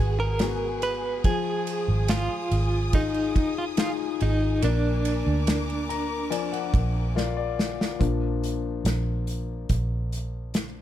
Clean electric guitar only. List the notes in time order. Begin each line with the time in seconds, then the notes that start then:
Already playing: G#4
0.20 A#4
0.83 B4
1.25 G#4
2.10 F4
2.95 D#4
3.58 F4
3.80 F4
4.22 D#4
4.64 D4